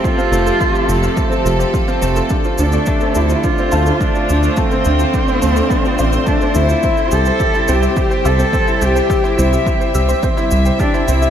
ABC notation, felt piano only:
X:1
M:4/4
L:1/16
Q:1/4=106
K:C
V:1 name="Felt piano"
F C A, F F G F A, A, C F G F C A, F | D F D A, A, C D F D C A, D D F D A, | A, C D F D C A, D D F D A, A, C D F | C E G c G E C G G c G C C E G c |
G E C G G c G C C E G c G E C G |]